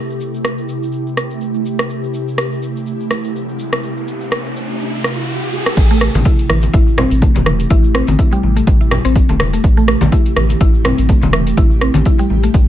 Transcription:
Already playing: ambient pad C3 A3 E4 G4
0.10 shaker
0.21 shaker
0.34 shaker
0.45 cross-stick, shaker
0.58 shaker
0.69 shaker
0.83 shaker
0.92 shaker
1.07 shaker
1.17 cross-stick, shaker
1.30 shaker
1.41 shaker
1.54 shaker
1.66 shaker
1.79 cross-stick, shaker
1.89 riser, shaker
2.04 shaker
2.14 shaker
2.28 shaker
2.38 cross-stick, shaker
2.52 shaker
2.62 shaker
2.77 shaker
2.86 shaker
3.00 shaker
3.10 cross-stick, shaker
3.24 shaker
3.36 shaker
3.49 shaker
3.59 shaker
3.73 cross-stick, shaker
3.84 shaker
3.97 shaker
4.08 shaker
4.21 shaker
4.31 cross-stick, shaker
4.46 shaker
4.56 shaker
4.70 shaker
4.80 shaker
4.94 shaker
5.04 cross-stick, shaker
5.18 shaker
5.28 shaker
5.42 shaker
5.52 shaker
5.66 cross-stick, shaker
5.77 analog synth bass A1, ambient pad C3 A3 E4 G4, kick, closed hi-hat, crash, shaker
5.91 synth pluck A3, shaker
6.01 cross-stick
6.15 analog synth bass A1, closed hi-hat, mid tom, high conga, low conga, shaker
6.25 synth pluck E4, kick, closed hi-hat, shaker
6.39 closed hi-hat, shaker
6.49 analog synth bass A1, synth pluck E3, cross-stick, high conga
6.62 closed hi-hat, high conga, shaker
6.73 analog synth bass A1, synth pluck E4, kick, closed hi-hat, shaker
6.88 shaker
6.98 synth pluck C4, cross-stick, low conga
7.11 analog synth bass A1, closed hi-hat, shaker
7.22 synth pluck A3, kick, closed hi-hat, high conga, shaker
7.36 analog synth bass E1, closed hi-hat, high conga, low conga, shaker
7.46 synth pluck E3, cross-stick, mid tom
7.60 closed hi-hat, shaker
7.70 analog synth bass A1, synth pluck E4, kick, closed hi-hat, shaker
7.84 shaker
7.95 synth pluck C4, cross-stick
8.07 analog synth bass A1, closed hi-hat, mid tom, high conga, shaker
8.19 synth pluck E4, kick, closed hi-hat, shaker
8.32 synth pluck G3, closed hi-hat, shaker
8.43 analog synth bass A1, high conga
8.56 synth pluck A3, closed hi-hat, shaker
8.67 analog synth bass A1, kick, closed hi-hat, shaker
8.81 synth pluck E4, shaker
8.91 cross-stick, low conga
9.05 analog synth bass A1, synth pluck C4, closed hi-hat, shaker
9.16 kick, closed hi-hat, shaker
9.29 analog synth bass E1, synth pluck A3, closed hi-hat, high conga, shaker
9.40 cross-stick, mid tom, low conga
9.53 synth pluck A3, closed hi-hat, shaker
9.64 analog synth bass A1, kick, closed hi-hat, shaker
9.77 synth pluck A3, shaker
9.88 cross-stick
10.01 analog synth bass A1, closed hi-hat, mid tom, high conga, low conga, shaker
10.12 synth pluck E4, kick, closed hi-hat, shaker
10.26 closed hi-hat, shaker
10.36 analog synth bass A1, synth pluck E3, cross-stick, high conga
10.50 closed hi-hat, high conga, shaker
10.61 analog synth bass A1, synth pluck E4, kick, closed hi-hat, shaker
10.74 shaker
10.85 synth pluck C4, cross-stick, low conga
10.98 analog synth bass A1, closed hi-hat, shaker
11.09 synth pluck A3, kick, closed hi-hat, high conga, shaker
11.22 analog synth bass E1, closed hi-hat, high conga, low conga, shaker
11.33 synth pluck E3, cross-stick, mid tom
11.47 closed hi-hat, shaker
11.57 analog synth bass A1, synth pluck E4, kick, closed hi-hat, high conga, shaker
11.71 shaker
11.81 synth pluck C4, cross-stick
11.94 analog synth bass A1, closed hi-hat, mid tom, high conga, shaker
12.06 synth pluck E4, kick, closed hi-hat, shaker
12.19 synth pluck G3, closed hi-hat, shaker
12.30 analog synth bass A1, high conga
12.43 synth pluck A3, closed hi-hat, shaker
12.54 analog synth bass A1, kick, closed hi-hat, shaker

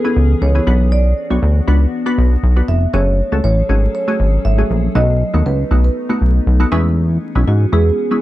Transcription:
Already playing: ambient pad E3 B3 C#4 G#4, marimba B4
0.04 synth pluck B3 C#4 E4 G#4
0.16 analog synth bass C#2
0.42 analog synth bass C#2, marimba C#5
0.55 synth pluck B3 C#4 E4 G#4
0.67 analog synth bass B1, synth pluck B3 D4 F#4 B4, ambient pad B3 D4 F#4
0.92 marimba D5
1.30 analog synth bass B1, synth pluck B3 D4 F#4 C#5
1.42 analog synth bass D2
1.68 analog synth bass C#2, synth pluck B3 D4 F#4 B4
2.06 synth pluck B3 D4 F#4 B4
2.18 analog synth bass B1
2.43 analog synth bass B1
2.56 synth pluck B3 D4 F#4 B4
2.68 analog synth bass F1, marimba E5
2.93 analog synth bass F#1, ambient pad F#3 C#4 G#4 A4, synth pluck A3 C#4 F#4 G#4, marimba C#5
3.32 analog synth bass C#2, synth pluck A3 C#4 F#4 A4
3.44 analog synth bass A1, marimba C#5
3.69 analog synth bass G#1, synth pluck A3 C#4 F#4 G#4
3.95 marimba C#5
4.08 synth pluck A3 C#4 F#4 G#4
4.20 analog synth bass G#1
4.45 analog synth bass G#1, marimba E5
4.58 synth pluck A3 C#4 F#4 G#4
4.70 analog synth bass A#1
4.95 analog synth bass B1, synth pluck A3 B3 D#4 F#4, ambient pad A3 B3 D#4, marimba D#5
5.34 analog synth bass D#2, synth pluck A3 B3 D#4 F#4
5.46 analog synth bass C#2, marimba B4
5.71 analog synth bass B1, synth pluck A3 B3 D#4 F#4
5.84 marimba B4
6.09 synth pluck A3 B3 D#4 F#4
6.21 analog synth bass B1
6.47 analog synth bass B1
6.60 synth pluck A3 B3 D#4 F#4
6.72 analog synth bass E2, ambient pad E3 C#4 G#4, synth pluck G#3 B3 C#4 E4
7.35 analog synth bass B1, synth pluck G#3 B3 C#4 E4
7.47 analog synth bass G#2, marimba F#4
7.72 analog synth bass E2, synth pluck G#3 B3 C#4 E4, marimba G#4
8.11 synth pluck G#3 B3 C#4 E4

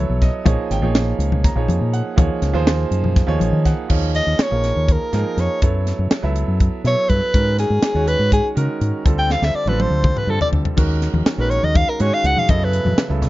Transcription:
Already playing: grand piano F#3 B3 E4 A4 C#5 E5
0.09 fingered electric bass B1
0.22 grand piano D#5, kick, snare, closed hi-hat
0.33 low conga
0.45 fingered electric bass A#1, grand piano F3 A#3 D#4 G#4 C#5, kick, closed hi-hat, muted conga, high conga, low conga
0.70 fingered electric bass G#1, grand piano G5, snare, closed hi-hat
0.82 fingered electric bass A#1, grand piano F3 A#3 D#4 G#4 C#5, high conga, low conga
0.95 snare, closed hi-hat
1.19 fingered electric bass C#2, closed hi-hat
1.32 muted conga, high conga, low conga
1.44 grand piano A#5, kick, snare, closed hi-hat
1.55 fingered electric bass A#1, grand piano F3 A#3 D#4 G#4 C#5
1.68 fingered electric bass F2, closed hi-hat, high conga
1.81 fingered electric bass A#2
1.93 grand piano F#5, closed hi-hat
2.05 low conga
2.16 fingered electric bass D#2, grand piano F3 A#3 D#4 G#4 C#5, kick, closed hi-hat, muted conga, high conga, low conga
2.30 low conga
2.42 fingered electric bass C#2, snare, closed hi-hat, low conga
2.53 fingered electric bass D#2, grand piano F3 A#3 D#4 G#4 C5, high conga
2.67 snare, closed hi-hat
2.91 fingered electric bass F#2, closed hi-hat
3.04 muted conga, high conga, low conga
3.16 kick, snare, closed hi-hat
3.27 fingered electric bass D#2, grand piano F3 A#3 D#4 G#4 C#5
3.40 fingered electric bass A#1, grand piano C#5, closed hi-hat, high conga
3.53 fingered electric bass D#3, low conga
3.65 grand piano F#5, kick, snare, closed hi-hat
3.88 fingered electric bass D#2, grand piano F3 A#3 D#4 G#4 C#5, kick, crash
4.15 soprano saxophone D#5, closed hi-hat
4.27 fingered electric bass D#2
4.39 soprano saxophone C#5, muted fingered electric bass stroke, snare, closed hi-hat
4.50 fingered electric bass A#1, grand piano F3 A#3 D#4 G#4 A#4
4.64 snare, closed hi-hat
4.76 fingered electric bass D#2
4.88 soprano saxophone A#4, kick, closed hi-hat
5.13 fingered electric bass G#2, grand piano F3 A#3 D#4 G#4 A#4, snare, closed hi-hat
5.37 fingered electric bass F2, soprano saxophone C#5, snare, closed hi-hat
5.62 fingered electric bass F#2, grand piano F#3 B3 E4 A4 C#5, soprano saxophone A4, kick, closed hi-hat
5.87 snare, closed hi-hat
5.99 fingered electric bass F#2
6.11 muted fingered electric bass stroke, snare, closed hi-hat
6.22 fingered electric bass C#2, grand piano F#3 B3 E4 A4 E5
6.36 closed hi-hat
6.48 fingered electric bass F#2
6.60 kick, closed hi-hat
6.84 fingered electric bass B2, grand piano F#3 B3 E4 A4 E5, soprano saxophone C#5, snare, closed hi-hat
7.09 fingered electric bass G2, soprano saxophone B4, kick, closed hi-hat
7.33 fingered electric bass G#2, grand piano D#3 G#3 C#4 F#4 A#4, kick, closed hi-hat
7.58 soprano saxophone G#4, snare, closed hi-hat
7.70 fingered electric bass G#2
7.82 muted fingered electric bass stroke, snare, closed hi-hat
7.94 fingered electric bass D#2, grand piano D#3 G#3 C#4 F#4 C#5
8.08 soprano saxophone B4, closed hi-hat
8.19 fingered electric bass G#2
8.32 soprano saxophone G#4, kick, closed hi-hat
8.55 fingered electric bass C#3, grand piano D#3 G#3 C#4 F#4 A#4, closed hi-hat
8.81 fingered electric bass G#2, closed hi-hat
9.04 fingered electric bass D2, grand piano D3 G3 C4 F4 A4, kick, closed hi-hat
9.18 soprano saxophone G5
9.30 soprano saxophone F5, snare
9.42 fingered electric bass D2, soprano saxophone E5, snare
9.55 soprano saxophone D5
9.66 fingered electric bass A1, grand piano D3 G3 C4 F4 A4, soprano saxophone B4, high tom
9.80 soprano saxophone C5, high tom
9.90 fingered electric bass D2
10.04 kick, mid tom
10.17 soprano saxophone B4, mid tom
10.27 fingered electric bass G2, grand piano D3 G3 C4 F4 A4, soprano saxophone A4
10.41 soprano saxophone D5, floor tom
10.52 fingered electric bass D2, floor tom
10.65 floor tom
10.76 fingered electric bass D#2, grand piano D#3 G#3 C#4 F#4 A#4, kick, closed hi-hat, crash, muted conga
11.02 snare, closed hi-hat, low conga
11.13 fingered electric bass D#2, high conga, low conga
11.26 muted fingered electric bass stroke, snare, closed hi-hat, low conga
11.38 fingered electric bass A#1, grand piano D#3 G#3 C#4 F#4 A#4, soprano saxophone B4
11.50 soprano saxophone C#5, closed hi-hat
11.63 fingered electric bass D#2, soprano saxophone D#5, muted conga
11.75 soprano saxophone F5, kick, closed hi-hat, high conga
11.89 soprano saxophone A#4
11.99 fingered electric bass G#2, grand piano D#3 G#3 C#4 F#4 G#4, soprano saxophone C#5, closed hi-hat
12.14 soprano saxophone F5
12.24 fingered electric bass C#2, soprano saxophone F#5, snare, closed hi-hat
12.37 soprano saxophone F5, high conga, low conga
12.48 fingered electric bass F#2, grand piano C#3 F#3 B3 E4 A4, soprano saxophone D#5, kick, closed hi-hat, muted conga
12.61 soprano saxophone B4, low conga
12.73 closed hi-hat
12.85 fingered electric bass F#2, high conga, low conga
12.97 muted fingered electric bass stroke, snare, closed hi-hat, low conga
13.09 fingered electric bass C#2, grand piano C#3 F#3 B3 E4 A4
13.22 snare, closed hi-hat, low conga

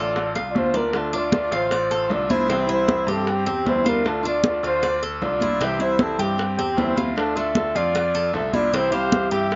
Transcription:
Already playing: grand piano A1, nylon-string guitar D3 A3 D4 F4, trumpet F4, cuban tres A4, muted trumpet D5
0.16 muted nylon-string guitar stroke, high bongo, high conga
0.35 grand piano C2, cuban tres F4, high bongo, high conga
0.51 trumpet F4, muted trumpet D5
0.55 grand piano D2, nylon-string guitar D3 A3 D4 F4, trumpet F4, muted trumpet C5, high conga
0.74 nylon-string guitar A3 D4 F4, trumpet D4, muted trumpet A#4, cuban tres D5, low bongo
0.93 nylon-string guitar D3 A3 D4 F4, trumpet D4, high bongo, high conga
0.98 muted trumpet A4
1.13 nylon-string guitar A3 D4 F4, cuban tres D4, trumpet F4, muted trumpet D5, high conga
1.32 nylon-string guitar D3 A3 D4 F4, high bongo, high conga
1.51 grand piano A1, cuban tres F4, trumpet F4, muted trumpet C5, high bongo, high conga
1.71 cuban tres D5, muted nylon-string guitar stroke, high bongo, high conga
1.91 cuban tres A4, high bongo, high conga
2.09 grand piano C2, nylon-string guitar D3 A3 D4 F4, trumpet F4, muted trumpet D5, high bongo, low bongo, high conga
2.29 nylon-string guitar A3 D4 F4, cuban tres E4, trumpet E4, muted trumpet C5, high bongo, high conga
2.48 nylon-string guitar C3 E3 G3 C4 E4, cuban tres C4, high bongo, high conga
2.67 nylon-string guitar E3 G3 C4 E4, cuban tres E4, high conga
2.72 trumpet E4, muted trumpet C5
2.87 nylon-string guitar E3 G3 C4 E4, high bongo, high conga
3.07 grand piano G2, trumpet C4, cuban tres G4, high bongo, high conga
3.11 muted trumpet A4
3.27 trumpet C4, muted trumpet G4, muted nylon-string guitar stroke, high bongo, high conga
3.46 grand piano E2, cuban tres C4, high bongo, high conga
3.65 grand piano D2, nylon-string guitar E3 G3 C4 E4, trumpet E4, high bongo, low bongo, high conga
3.69 muted trumpet C5
3.84 nylon-string guitar E3 G3 C4 E4, trumpet D4, cuban tres F4, high bongo, high conga
3.89 muted trumpet A#4
4.04 nylon-string guitar D3 A3 D4 F4, trumpet D4, muted trumpet A4, high bongo, high conga
4.23 nylon-string guitar A3 D4 F4, cuban tres D4, trumpet F4, high conga
4.28 muted trumpet D5
4.43 nylon-string guitar D3 A3 D4 F4, high bongo, high conga
4.63 grand piano D2, cuban tres F4, trumpet F4, muted trumpet C5, high bongo, high conga
4.82 cuban tres D5, muted nylon-string guitar stroke, high bongo, high conga
5.02 cuban tres A4, high bongo, high conga
5.21 grand piano C2, nylon-string guitar D3 A3 D4 F4, trumpet F4, muted trumpet D5, high bongo, low bongo, high conga
5.40 nylon-string guitar A3 D4 F4, cuban tres E4, high bongo, high conga
5.60 nylon-string guitar C3 E3 G3 C4 E4, cuban tres C4, trumpet G4, high bongo, high conga
5.64 muted trumpet E5
5.79 nylon-string guitar E3 G3 C4 E4, cuban tres E4, trumpet E4, muted trumpet C5, high conga
5.98 nylon-string guitar E3 G3 C4 E4, trumpet C4, muted trumpet A4, high bongo, high conga
6.19 grand piano G2, trumpet C4, cuban tres G4, muted trumpet G4, high bongo, high conga
6.38 muted nylon-string guitar stroke, high bongo, high conga
6.58 grand piano E2, cuban tres C4, high bongo, high conga
6.77 grand piano D2, nylon-string guitar E3 G3 C4 E4, trumpet E4, muted trumpet C5, high bongo, low bongo, high conga
6.96 nylon-string guitar E3 G3 C4 E4, cuban tres F4, high bongo, high conga
7.15 nylon-string guitar D3 A3 D4 F4, trumpet D4, muted trumpet A4, high bongo, high conga
7.36 nylon-string guitar A3 D4 F4, cuban tres D4, trumpet A4, muted trumpet E5, high conga
7.55 nylon-string guitar D3 A3 D4 F4, high bongo, high conga
7.75 grand piano F2, cuban tres F4, trumpet F4, muted trumpet D5, high bongo, high conga
7.95 cuban tres D5, muted nylon-string guitar stroke, high bongo, high conga
8.14 cuban tres A4, high bongo, high conga
8.33 grand piano C2, nylon-string guitar D3 A3 D4 F4, trumpet A4, muted trumpet E5, high bongo, low bongo, high conga
8.53 nylon-string guitar A3 D4 F4, cuban tres E4, trumpet F4, muted trumpet D5, high bongo, high conga
8.72 nylon-string guitar C3 E3 G3 C4 E4, cuban tres C4, trumpet E4, muted trumpet C5, high bongo, high conga
8.92 nylon-string guitar E3 G3 C4 E4, cuban tres G4, trumpet C5, muted trumpet F5, high conga
9.12 nylon-string guitar E3 G3 C4 E4, high bongo, high conga
9.31 grand piano G2, trumpet G4, cuban tres G4, muted trumpet E5, high bongo, high conga
9.51 muted nylon-string guitar stroke, high bongo, high conga

